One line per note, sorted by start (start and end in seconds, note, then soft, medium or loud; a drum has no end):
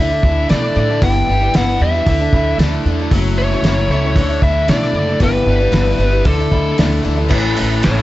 0.00 0.18 D2 medium
0.00 0.11 D3 medium
0.00 0.11 A3 medium
0.00 1.01 A3 medium
0.00 0.11 D4 medium
0.00 1.00 D4 medium
0.00 0.10 E4 medium
0.00 1.01 E4 medium
0.00 1.01 A4 medium
0.00 0.47 E5 medium
0.11 0.24 A3 soft
0.11 0.25 D4 soft
0.11 0.24 E4 soft
0.23 0.44 D2 medium
0.23 0.49 D3 medium
0.23 0.50 A3 medium
0.23 0.50 D4 medium
0.23 0.50 E4 medium
0.23 kick medium
0.49 0.71 B2 medium
0.49 0.74 D3 medium
0.49 0.75 A3 medium
0.49 0.76 D4 medium
0.49 0.77 E4 medium
0.49 1.04 D5 medium
0.49 snare medium
0.49 open hi-hat soft
0.75 0.97 A2 medium
0.75 0.89 D3 medium
0.75 0.89 A3 medium
0.75 0.90 D4 medium
0.75 0.89 E4 medium
0.90 1.02 A3 soft
0.90 1.02 D4 medium
0.90 1.02 E4 soft
1.01 1.23 G1 medium
1.01 1.41 G2 medium
1.01 1.41 D3 medium
1.01 1.41 E3 medium
1.01 1.41 G3 medium
1.01 1.41 B3 medium
1.01 2.07 B3 medium
1.01 2.07 D4 medium
1.01 1.40 E4 medium
1.01 2.07 E4 medium
1.01 2.07 G4 medium
1.01 1.56 G5 loud
1.01 kick loud
1.01 open hi-hat soft
1.29 1.50 G1 medium
1.29 1.80 G3 medium
1.41 1.55 E3 soft
1.41 1.55 G3 soft
1.41 1.55 B3 soft
1.41 1.54 E4 medium
1.54 1.76 G1 medium
1.54 1.81 G2 medium
1.54 1.81 D3 medium
1.54 1.79 E3 medium
1.54 1.80 G3 medium
1.54 1.81 B3 medium
1.54 1.81 E4 medium
1.54 1.82 F#5 loud
1.54 snare loud
1.54 open hi-hat soft
1.80 2.02 E2 medium
1.80 1.94 E3 medium
1.80 1.94 G3 medium
1.80 1.95 B3 medium
1.80 1.93 E4 medium
1.80 2.56 E5 medium
1.94 2.08 E3 soft
1.94 2.08 G3 soft
1.94 2.08 B3 medium
1.94 2.07 E4 medium
2.07 2.28 D2 medium
2.07 2.21 D3 medium
2.07 3.11 A3 medium
2.07 2.21 A3 medium
2.07 3.12 D4 medium
2.07 2.20 D4 medium
2.07 3.11 E4 medium
2.07 2.19 E4 medium
2.07 3.11 A4 medium
2.07 kick loud
2.07 open hi-hat soft
2.20 2.34 A3 soft
2.20 2.34 D4 medium
2.20 2.33 E4 medium
2.33 2.54 D2 medium
2.33 2.59 D3 medium
2.33 2.60 A3 medium
2.33 2.60 D4 medium
2.33 kick medium
2.37 2.61 E4 medium
2.58 2.80 D2 medium
2.58 2.85 D3 medium
2.58 2.85 A3 medium
2.58 2.86 D4 medium
2.58 2.87 E4 medium
2.58 snare loud
2.58 open hi-hat soft
2.85 3.07 E2 medium
2.85 2.99 D3 medium
2.85 2.99 A3 medium
2.85 3.00 D4 medium
2.85 2.98 E4 medium
2.99 3.13 A3 medium
2.99 3.13 D4 medium
2.99 3.12 E4 medium
3.11 3.54 F#1 medium
3.11 3.52 F#3 medium
3.11 4.16 A3 medium
3.11 3.53 A3 medium
3.11 4.16 C#4 medium
3.11 3.53 C#4 medium
3.11 4.15 E4 medium
3.11 3.52 E4 medium
3.11 4.16 F#4 medium
3.11 kick loud
3.11 open hi-hat medium
3.37 3.90 A3 medium
3.37 3.90 C#5 medium
3.53 3.65 A3 soft
3.53 3.65 C#4 medium
3.53 3.65 E4 medium
3.62 3.84 F#1 medium
3.62 3.91 F#3 medium
3.62 3.91 A3 medium
3.62 snare loud
3.62 open hi-hat soft
3.67 3.92 C#4 medium
3.67 3.92 E4 medium
3.88 4.16 C#2 medium
3.88 4.43 C#5 medium
3.92 4.05 F#3 medium
3.92 4.05 A3 medium
3.92 4.05 C#4 medium
3.92 4.03 E4 medium
4.05 4.17 A3 soft
4.05 4.18 C#4 medium
4.05 4.17 E4 medium
4.16 4.37 D2 medium
4.16 4.30 D3 medium
4.16 5.21 A3 medium
4.16 4.30 A3 medium
4.16 5.19 D4 medium
4.16 4.29 D4 medium
4.16 5.19 E4 medium
4.16 4.28 E4 medium
4.16 5.22 A4 medium
4.16 kick loud
4.16 open hi-hat soft
4.29 4.42 A3 soft
4.29 4.43 D4 soft
4.29 4.43 E4 medium
4.42 4.64 D2 medium
4.42 4.67 D3 medium
4.42 4.68 A3 medium
4.42 4.69 D4 medium
4.42 4.68 E4 medium
4.42 4.69 E5 medium
4.42 kick medium
4.68 4.90 B2 loud
4.68 4.93 D3 medium
4.68 4.93 A3 medium
4.68 4.95 D4 medium
4.68 4.96 E4 medium
4.68 5.19 D5 medium
4.68 snare medium
4.68 open hi-hat soft
4.82 snare soft
4.93 5.15 F#1 medium
4.93 5.08 D3 medium
4.93 5.08 A3 medium
4.93 5.08 D4 medium
4.93 5.07 E4 medium
5.08 5.20 A3 soft
5.08 5.21 D4 soft
5.08 5.20 E4 soft
5.19 5.42 G1 medium
5.19 5.60 G2 medium
5.19 5.61 D3 medium
5.19 5.61 E3 medium
5.19 5.60 G3 medium
5.19 6.25 B3 medium
5.19 5.59 B3 medium
5.19 6.25 D4 medium
5.19 6.25 E4 medium
5.19 5.58 E4 medium
5.19 6.25 G4 medium
5.19 kick loud
5.19 open hi-hat soft
5.23 6.26 B4 medium
5.46 5.68 G1 medium
5.46 5.99 G3 medium
5.60 5.72 E3 soft
5.60 5.71 G3 soft
5.60 5.72 B3 soft
5.60 5.72 E4 medium
5.72 5.95 G1 medium
5.72 6.00 G2 medium
5.72 6.00 D3 medium
5.72 5.97 E3 medium
5.72 5.98 G3 medium
5.72 5.99 B3 medium
5.72 6.00 E4 medium
5.72 snare loud
5.72 open hi-hat soft
5.98 6.21 G1 medium
5.98 6.12 E3 medium
5.98 6.11 G3 medium
5.98 6.10 B3 medium
5.98 6.09 E4 medium
6.10 6.24 E3 soft
6.10 6.26 G3 medium
6.10 6.26 B3 soft
6.10 6.25 E4 medium
6.25 6.47 D2 medium
6.25 6.39 D3 medium
6.25 6.40 A3 medium
6.25 7.30 A3 medium
6.25 6.39 D4 medium
6.25 7.31 D4 medium
6.25 6.38 E4 medium
6.25 7.29 E4 medium
6.25 6.76 A4 medium
6.25 7.29 A4 medium
6.25 kick loud
6.25 open hi-hat soft
6.39 6.51 A3 soft
6.39 6.52 D4 medium
6.39 6.52 E4 medium
6.51 6.74 D2 medium
6.51 6.77 D3 medium
6.51 6.77 A3 medium
6.51 6.78 D4 medium
6.51 6.79 E4 medium
6.51 kick medium
6.78 7.00 D2 medium
6.78 7.02 D3 medium
6.78 7.02 A3 medium
6.78 7.03 D4 medium
6.78 7.04 E4 medium
6.78 snare loud
6.78 open hi-hat soft
7.03 7.26 D2 medium
7.03 7.18 D3 medium
7.03 7.30 E3 medium
7.03 7.17 A3 medium
7.03 7.16 D4 medium
7.03 7.15 E4 medium
7.16 7.28 A3 soft
7.16 7.29 D4 medium
7.16 7.29 E4 medium
7.28 7.55 A1 medium
7.28 7.57 A2 medium
7.28 7.54 E3 medium
7.28 7.55 A3 medium
7.28 8.02 A3 medium
7.28 7.56 C#4 medium
7.28 8.02 C#4 medium
7.28 7.57 E4 loud
7.28 8.02 E4 medium
7.28 8.02 A4 medium
7.28 kick medium
7.28 crash medium
7.55 7.81 E3 medium
7.55 7.82 A3 medium
7.55 7.82 C#4 medium
7.55 7.82 E4 medium
7.55 open hi-hat medium
7.60 7.83 A1 medium
7.82 8.02 A1 medium
7.82 8.02 A2 medium
7.82 8.02 E3 medium
7.82 8.02 A3 medium
7.82 8.02 C#4 medium
7.82 8.02 E4 medium
7.82 8.02 A4 medium
7.82 8.02 C#5 medium
7.82 snare loud
7.82 open hi-hat medium